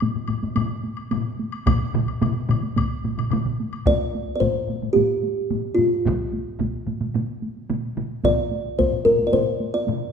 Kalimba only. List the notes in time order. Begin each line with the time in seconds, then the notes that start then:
3.87 D5
4.36 D5
4.40 C5
4.93 G4
5.75 F4
8.25 D5
8.79 C5
9.05 A#4
9.27 D5
9.33 C5
9.74 D5